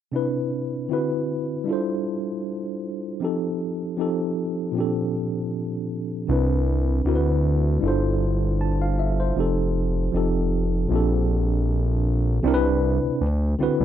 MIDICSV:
0, 0, Header, 1, 3, 480
1, 0, Start_track
1, 0, Key_signature, 0, "major"
1, 0, Tempo, 769231
1, 77, Time_signature, 4, 2, 24, 8
1, 8642, End_track
2, 0, Start_track
2, 0, Title_t, "Tine electric piano"
2, 0, Program_c, 0, 4
2, 73, Note_on_c, 0, 48, 54
2, 80, Note_on_c, 0, 60, 47
2, 84, Note_on_c, 0, 62, 53
2, 94, Note_on_c, 0, 64, 49
2, 100, Note_on_c, 0, 71, 63
2, 198, Control_c, 0, 64, 127
2, 551, Note_off_c, 0, 60, 0
2, 554, Note_on_c, 0, 50, 52
2, 555, Note_off_c, 0, 48, 0
2, 559, Note_on_c, 0, 60, 51
2, 561, Note_off_c, 0, 62, 0
2, 561, Note_off_c, 0, 64, 0
2, 566, Control_c, 0, 64, 0
2, 568, Note_on_c, 0, 64, 53
2, 569, Note_off_c, 0, 71, 0
2, 573, Note_on_c, 0, 66, 48
2, 582, Note_on_c, 0, 71, 65
2, 680, Control_c, 0, 64, 127
2, 1024, Note_on_c, 0, 55, 57
2, 1034, Note_on_c, 0, 62, 51
2, 1036, Note_off_c, 0, 50, 0
2, 1038, Note_off_c, 0, 60, 0
2, 1038, Note_off_c, 0, 64, 0
2, 1045, Note_off_c, 0, 66, 0
2, 1045, Note_on_c, 0, 64, 46
2, 1047, Control_c, 0, 64, 0
2, 1050, Note_off_c, 0, 71, 0
2, 1055, Note_on_c, 0, 65, 49
2, 1065, Note_on_c, 0, 69, 48
2, 1078, Note_on_c, 0, 72, 59
2, 1164, Control_c, 0, 64, 127
2, 1971, Note_off_c, 0, 55, 0
2, 1976, Note_off_c, 0, 62, 0
2, 1982, Note_off_c, 0, 64, 0
2, 1987, Note_off_c, 0, 65, 0
2, 1992, Note_off_c, 0, 69, 0
2, 1998, Note_on_c, 0, 53, 57
2, 1999, Note_off_c, 0, 72, 0
2, 2004, Note_on_c, 0, 60, 53
2, 2007, Control_c, 0, 64, 0
2, 2012, Note_on_c, 0, 63, 55
2, 2017, Note_on_c, 0, 67, 50
2, 2025, Note_on_c, 0, 69, 64
2, 2103, Control_c, 0, 64, 127
2, 2468, Note_off_c, 0, 53, 0
2, 2475, Note_off_c, 0, 60, 0
2, 2475, Note_on_c, 0, 53, 54
2, 2482, Note_off_c, 0, 63, 0
2, 2482, Note_on_c, 0, 60, 48
2, 2486, Control_c, 0, 64, 0
2, 2487, Note_off_c, 0, 67, 0
2, 2489, Note_on_c, 0, 63, 52
2, 2491, Note_off_c, 0, 69, 0
2, 2496, Note_on_c, 0, 67, 51
2, 2503, Note_on_c, 0, 69, 64
2, 2598, Control_c, 0, 64, 127
2, 2942, Note_on_c, 0, 46, 57
2, 2946, Note_off_c, 0, 53, 0
2, 2953, Note_on_c, 0, 53, 51
2, 2958, Note_off_c, 0, 60, 0
2, 2963, Note_off_c, 0, 63, 0
2, 2965, Control_c, 0, 64, 0
2, 2965, Note_on_c, 0, 60, 48
2, 2966, Note_off_c, 0, 67, 0
2, 2970, Note_off_c, 0, 69, 0
2, 2975, Note_on_c, 0, 62, 53
2, 2986, Note_on_c, 0, 67, 55
2, 2997, Note_on_c, 0, 69, 65
2, 3062, Control_c, 0, 64, 127
2, 3891, Note_off_c, 0, 46, 0
2, 3896, Note_off_c, 0, 53, 0
2, 3902, Note_off_c, 0, 60, 0
2, 3907, Note_off_c, 0, 62, 0
2, 3913, Note_off_c, 0, 67, 0
2, 3914, Note_on_c, 0, 48, 58
2, 3918, Note_off_c, 0, 69, 0
2, 3921, Note_on_c, 0, 60, 51
2, 3927, Control_c, 0, 64, 0
2, 3928, Note_on_c, 0, 62, 56
2, 3934, Note_on_c, 0, 64, 53
2, 3941, Note_on_c, 0, 71, 65
2, 4019, Control_c, 0, 64, 127
2, 4396, Note_off_c, 0, 48, 0
2, 4396, Note_off_c, 0, 60, 0
2, 4397, Note_on_c, 0, 50, 55
2, 4403, Note_off_c, 0, 62, 0
2, 4403, Note_off_c, 0, 64, 0
2, 4404, Note_on_c, 0, 60, 49
2, 4406, Control_c, 0, 64, 0
2, 4409, Note_off_c, 0, 71, 0
2, 4410, Note_on_c, 0, 64, 52
2, 4416, Note_on_c, 0, 66, 56
2, 4423, Note_on_c, 0, 70, 51
2, 4454, Note_off_c, 0, 70, 0
2, 4464, Note_on_c, 0, 71, 61
2, 4506, Control_c, 0, 64, 127
2, 4862, Note_on_c, 0, 55, 58
2, 4873, Note_on_c, 0, 62, 56
2, 4876, Note_off_c, 0, 64, 0
2, 4877, Note_off_c, 0, 50, 0
2, 4881, Note_off_c, 0, 60, 0
2, 4884, Note_on_c, 0, 64, 53
2, 4886, Control_c, 0, 64, 0
2, 4887, Note_off_c, 0, 66, 0
2, 4895, Note_on_c, 0, 65, 52
2, 4905, Note_on_c, 0, 69, 55
2, 4911, Note_off_c, 0, 71, 0
2, 4916, Note_on_c, 0, 72, 68
2, 4996, Control_c, 0, 64, 127
2, 5132, Note_off_c, 0, 72, 0
2, 5372, Note_on_c, 0, 81, 51
2, 5489, Note_off_c, 0, 81, 0
2, 5501, Note_on_c, 0, 77, 55
2, 5599, Note_off_c, 0, 77, 0
2, 5612, Note_on_c, 0, 76, 56
2, 5729, Note_off_c, 0, 76, 0
2, 5741, Note_on_c, 0, 72, 51
2, 5810, Note_off_c, 0, 55, 0
2, 5816, Note_off_c, 0, 62, 0
2, 5821, Note_off_c, 0, 64, 0
2, 5827, Note_off_c, 0, 65, 0
2, 5832, Note_off_c, 0, 69, 0
2, 5840, Note_on_c, 0, 53, 59
2, 5846, Control_c, 0, 64, 0
2, 5846, Note_on_c, 0, 60, 51
2, 5852, Note_on_c, 0, 63, 57
2, 5860, Note_on_c, 0, 67, 53
2, 5867, Note_on_c, 0, 69, 67
2, 5947, Control_c, 0, 64, 127
2, 5963, Note_off_c, 0, 72, 0
2, 6310, Note_off_c, 0, 53, 0
2, 6317, Note_on_c, 0, 53, 59
2, 6318, Note_off_c, 0, 60, 0
2, 6325, Note_off_c, 0, 63, 0
2, 6326, Control_c, 0, 64, 0
2, 6326, Note_on_c, 0, 60, 49
2, 6329, Note_off_c, 0, 67, 0
2, 6332, Note_off_c, 0, 69, 0
2, 6332, Note_on_c, 0, 63, 51
2, 6339, Note_on_c, 0, 67, 53
2, 6345, Note_on_c, 0, 69, 62
2, 6427, Control_c, 0, 64, 127
2, 6784, Note_on_c, 0, 46, 58
2, 6788, Note_off_c, 0, 53, 0
2, 6795, Note_on_c, 0, 53, 58
2, 6798, Note_off_c, 0, 60, 0
2, 6805, Note_off_c, 0, 63, 0
2, 6805, Control_c, 0, 64, 0
2, 6806, Note_on_c, 0, 60, 53
2, 6808, Note_off_c, 0, 67, 0
2, 6811, Note_off_c, 0, 69, 0
2, 6816, Note_on_c, 0, 62, 56
2, 6826, Note_on_c, 0, 67, 58
2, 6836, Note_on_c, 0, 69, 67
2, 6908, Control_c, 0, 64, 127
2, 7732, Note_off_c, 0, 46, 0
2, 7737, Note_off_c, 0, 53, 0
2, 7743, Note_off_c, 0, 60, 0
2, 7748, Note_off_c, 0, 62, 0
2, 7753, Note_off_c, 0, 67, 0
2, 7756, Note_on_c, 0, 48, 92
2, 7758, Note_off_c, 0, 69, 0
2, 7763, Note_on_c, 0, 60, 83
2, 7765, Control_c, 0, 64, 0
2, 7770, Note_on_c, 0, 62, 82
2, 7778, Note_on_c, 0, 64, 76
2, 7785, Note_on_c, 0, 70, 78
2, 7815, Note_off_c, 0, 70, 0
2, 7825, Note_on_c, 0, 71, 102
2, 7891, Control_c, 0, 64, 127
2, 8237, Note_off_c, 0, 48, 0
2, 8240, Note_off_c, 0, 60, 0
2, 8244, Note_off_c, 0, 62, 0
2, 8245, Control_c, 0, 64, 0
2, 8248, Note_off_c, 0, 64, 0
2, 8271, Note_off_c, 0, 71, 0
2, 8350, Control_c, 0, 64, 127
2, 8478, Note_on_c, 0, 50, 76
2, 8485, Note_on_c, 0, 60, 70
2, 8492, Note_on_c, 0, 64, 63
2, 8499, Note_on_c, 0, 66, 62
2, 8504, Note_on_c, 0, 71, 79
2, 8642, Note_off_c, 0, 50, 0
2, 8642, Note_off_c, 0, 60, 0
2, 8642, Note_off_c, 0, 64, 0
2, 8642, Note_off_c, 0, 66, 0
2, 8642, Note_off_c, 0, 71, 0
2, 8642, End_track
3, 0, Start_track
3, 0, Title_t, "Analog synth bass"
3, 0, Program_c, 1, 38
3, 3922, Note_on_c, 1, 36, 75
3, 4376, Note_off_c, 1, 36, 0
3, 4401, Note_on_c, 1, 38, 76
3, 4855, Note_off_c, 1, 38, 0
3, 4884, Note_on_c, 1, 31, 78
3, 5816, Note_off_c, 1, 31, 0
3, 5844, Note_on_c, 1, 29, 67
3, 6297, Note_off_c, 1, 29, 0
3, 6324, Note_on_c, 1, 29, 70
3, 6777, Note_off_c, 1, 29, 0
3, 6803, Note_on_c, 1, 34, 80
3, 7735, Note_off_c, 1, 34, 0
3, 7762, Note_on_c, 1, 36, 94
3, 8105, Note_off_c, 1, 36, 0
3, 8134, Note_on_c, 1, 38, 45
3, 8176, Note_off_c, 1, 38, 0
3, 8241, Note_on_c, 1, 38, 82
3, 8456, Note_off_c, 1, 38, 0
3, 8484, Note_on_c, 1, 36, 46
3, 8535, Note_off_c, 1, 36, 0
3, 8610, Note_on_c, 1, 36, 91
3, 8642, Note_off_c, 1, 36, 0
3, 8642, End_track
0, 0, End_of_file